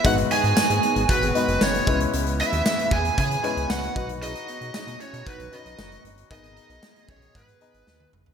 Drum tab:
HH |xxxx-xxxxxxx-xxx|xxxx-xxxxxxx-xxx|xxxx-xxxxxxx-xxx|xxxx-xxxxxxx----|
TB |----x-------x---|----x-------x---|----x-------x---|----x-----------|
SD |----o-------o---|----o-------o---|----o-------o---|----o-------o---|
T1 |----------------|----------------|----------------|-------------o--|
T2 |----------------|----------------|----------------|--------------o-|
FT |----------------|----------------|----------------|---------------o|
BD |o-------o-----o-|------o-o-----o-|--------o-------|o-----o-o-------|